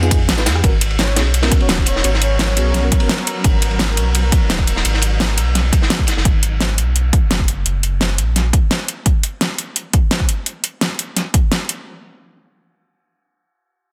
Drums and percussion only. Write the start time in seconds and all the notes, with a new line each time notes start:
0.03 tambourine
0.11 kick, closed hi-hat, ride, tambourine
0.29 snare, closed hi-hat, ride
0.38 snare, tambourine
0.46 snare, open hi-hat, ride, tambourine
0.55 cross-stick
0.64 kick, closed hi-hat, ride
0.81 closed hi-hat, ride
0.90 ride
0.99 snare, closed hi-hat, ride
1.08 ride
1.16 snare, closed hi-hat, ride
1.34 closed hi-hat, ride
1.43 snare, ride
1.52 kick, closed hi-hat
1.60 ride
1.69 snare, closed hi-hat, ride
1.78 kick
1.86 closed hi-hat, ride
1.96 snare
2.04 closed hi-hat, ride
2.14 snare
2.21 closed hi-hat, ride
2.39 snare, closed hi-hat, ride
2.57 closed hi-hat, ride
2.74 snare, closed hi-hat, ride
2.92 kick, closed hi-hat, ride
3.00 ride
3.09 snare, closed hi-hat
3.18 ride
3.27 closed hi-hat, ride
3.44 kick, closed hi-hat, ride
3.62 closed hi-hat, ride
3.71 ride
3.79 snare, closed hi-hat, ride
3.89 ride
3.97 closed hi-hat, ride
4.15 closed hi-hat, ride
4.32 kick, closed hi-hat, ride
4.50 snare, closed hi-hat, ride
4.59 kick
4.67 closed hi-hat, ride
4.76 snare
4.85 closed hi-hat, ride
4.94 snare
5.01 closed hi-hat, ride
5.20 snare, closed hi-hat, ride
5.38 closed hi-hat, ride
5.55 snare, closed hi-hat, ride
5.73 kick, closed hi-hat, ride
5.82 snare
5.90 snare, closed hi-hat, ride
5.99 kick
6.07 snare, closed hi-hat, ride
6.17 snare
6.25 kick, closed hi-hat
6.43 closed hi-hat
6.61 snare, closed hi-hat
6.78 closed hi-hat
6.96 closed hi-hat
7.13 kick, closed hi-hat
7.31 snare, closed hi-hat
7.40 kick
7.48 closed hi-hat
7.66 closed hi-hat
7.83 closed hi-hat
8.01 snare, closed hi-hat
8.18 closed hi-hat
8.36 snare, closed hi-hat
8.53 kick, closed hi-hat
8.71 snare, closed hi-hat
8.88 closed hi-hat
9.06 kick, closed hi-hat
9.23 closed hi-hat
9.41 snare, closed hi-hat
9.58 closed hi-hat
9.76 closed hi-hat
9.93 kick, closed hi-hat
10.11 snare, closed hi-hat
10.20 kick
10.29 closed hi-hat
10.46 closed hi-hat
10.64 closed hi-hat
10.81 snare, closed hi-hat
10.99 closed hi-hat
11.17 snare, closed hi-hat
11.34 kick, closed hi-hat
11.52 snare, closed hi-hat
11.69 closed hi-hat